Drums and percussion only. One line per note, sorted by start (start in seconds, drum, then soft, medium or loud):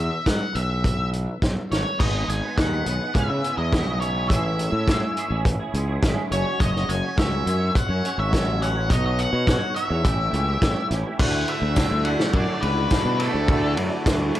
0.26 kick medium
0.26 snare loud
0.26 closed hi-hat medium
0.55 closed hi-hat medium
0.84 kick loud
0.84 closed hi-hat medium
1.13 closed hi-hat medium
1.42 kick loud
1.42 snare loud
1.42 closed hi-hat medium
1.72 snare medium
1.72 closed hi-hat medium
2.00 kick loud
2.00 crash loud
2.29 closed hi-hat medium
2.58 kick loud
2.58 snare loud
2.58 closed hi-hat medium
2.86 closed hi-hat medium
3.15 kick loud
3.15 closed hi-hat medium
3.44 closed hi-hat medium
3.73 kick loud
3.73 snare loud
3.73 closed hi-hat medium
4.02 closed hi-hat medium
4.30 kick loud
4.30 closed hi-hat loud
4.59 closed hi-hat medium
4.88 kick loud
4.88 snare loud
4.88 closed hi-hat medium
5.17 closed hi-hat medium
5.45 kick loud
5.45 closed hi-hat loud
5.74 closed hi-hat medium
6.02 kick loud
6.02 snare loud
6.02 closed hi-hat medium
6.32 closed hi-hat medium
6.60 kick loud
6.60 closed hi-hat medium
6.76 snare soft
6.89 closed hi-hat medium
7.18 kick loud
7.18 snare loud
7.18 closed hi-hat medium
7.47 closed hi-hat medium
7.75 kick loud
7.75 closed hi-hat medium
8.05 closed hi-hat medium
8.33 kick loud
8.33 snare loud
8.33 closed hi-hat medium
8.62 closed hi-hat medium
8.90 kick loud
8.90 closed hi-hat medium
9.19 closed hi-hat medium
9.47 kick loud
9.47 snare loud
9.47 closed hi-hat medium
9.76 closed hi-hat medium
10.05 kick loud
10.05 closed hi-hat loud
10.33 closed hi-hat medium
10.62 kick loud
10.62 snare loud
10.62 closed hi-hat medium
10.91 snare soft
10.91 closed hi-hat medium
11.19 kick loud
11.19 crash loud
11.48 ride medium
11.76 kick loud
11.76 snare loud
11.76 ride medium
11.76 tambourine loud
12.05 ride medium
12.20 snare medium
12.33 kick loud
12.33 ride medium
12.62 ride medium
12.91 kick loud
12.91 snare loud
12.91 ride medium
12.91 tambourine loud
13.20 snare soft
13.20 ride medium
13.48 kick loud
13.48 ride medium
13.77 ride medium
14.06 kick loud
14.06 snare loud
14.06 ride loud
14.06 tambourine loud
14.35 ride medium